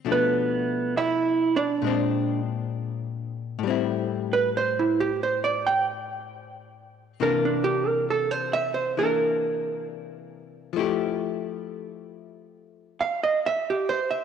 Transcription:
X:1
M:4/4
L:1/16
Q:"Swing" 1/4=67
K:F
V:1 name="Hollow-body jazz guitar"
[=B,=B]4 [Ee]2 [Dd]4 z6 | z3 =B c E G c d g z6 | B D G B A c e c B4 z4 | z8 z2 f _e =e G c e |]
V:2 name="Hollow-body jazz guitar"
[=B,,F,A,D]8 [_B,,_A,CD]8 | [A,,G,CE]16 | [C,E,B,D]8 [E,B,D]8 | [F,A,EG]16 |]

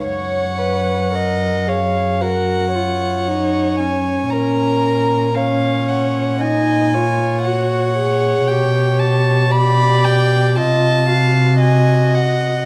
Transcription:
X:1
M:4/4
L:1/8
Q:1/4=57
K:F#
V:1 name="Violin"
f3 e f3 g | a2 e f g2 f2 | =g =a b g a2 ^g _g |]
V:2 name="Violin"
c2 d c A c3 | A2 c2 d c3- | c2 =d2 _e ^e _e2 |]
V:3 name="Viola"
c B A G F E D C- | C2 C2 D E F G | =G2 G2 E _G3 |]
V:4 name="Cello" clef=bass
F,,8 | A,,8 | B,,4 =C,4 |]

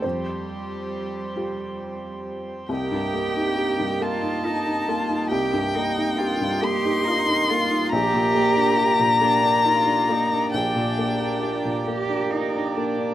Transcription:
X:1
M:6/8
L:1/16
Q:3/8=45
K:Cm
V:1 name="Violin"
G8- G z3 | g6 =a6 | g6 c'6 | b12 |
g6 z6 |]
V:2 name="Harmonium"
[CGc]12 | [B,Ge]12- | [B,Ge]12 | [B,Gd]12- |
[B,Gd]12 |]
V:3 name="Cello"
G,8- G,3 z | G6 F2 E2 F2 | G2 E2 F2 G2 E2 F2 | G6 D2 F2 E2 |
D6 G2 E2 D2 |]
V:4 name="Felt piano"
[F,,c]6 [FG]6 | C,, G,, B, E G G,, B, E F E B, E | C,, G,, B, E G G,, B, E F E B, E | B,,, B,, B, D G B,, B, D E D B, D |
B,,, B,, B, D G B,, B, D E D B, D |]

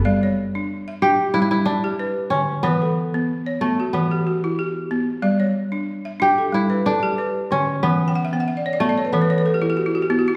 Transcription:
X:1
M:4/4
L:1/16
Q:"Swing 16ths" 1/4=92
K:Glyd
V:1 name="Balafon"
d c3 z e3 z4 B3 z | B A3 z c2 F2 G F2 G3 z | d c3 z e2 A2 B A2 B3 z | z3/2 g/2 f/2 e/2 g/2 f/2 e/2 d/2 c/2 d/2 e/2 d/2 c/2 B/2 A/2 B/2 c/2 B/2 A/2 G/2 A/2 G/2 F/2 E/2 F/2 G/2 E/2 F/2 E |]
V:2 name="Balafon"
G,2 z D2 z D2 G,2 z G2 z D,2 | E,2 z B,2 z B,2 E,2 z E2 z B,2 | G,2 z D2 z D2 G,2 z G2 z D,2 | E,2 z B,2 z B,2 E,2 z E2 z B,2 |]
V:3 name="Kora"
z6 G2 E/2 E/2 E D4 C2 | B,6 A,2 B,6 z2 | z6 G2 E2 D4 C2 | B,6 A,2 B,6 z2 |]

